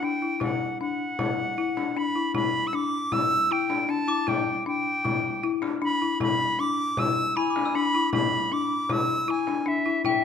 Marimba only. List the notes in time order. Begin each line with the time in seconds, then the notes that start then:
0.03 D4
0.22 E4
0.40 E4
0.81 D4
1.19 E4
1.58 E4
1.77 D4
1.97 D4
2.16 E4
2.35 E4
2.73 D4
3.12 E4
3.51 E4
3.70 D4
3.89 D4
4.08 E4
4.27 E4
4.66 D4
5.05 E4
5.44 E4
5.62 D4
5.82 D4
6.02 E4
6.21 E4
6.59 D4
6.99 E4
7.37 E4
7.56 D4
7.75 D4
7.95 E4
8.13 E4
8.52 D4
8.90 E4
9.28 E4
9.48 D4
9.66 D4
9.86 E4
10.05 E4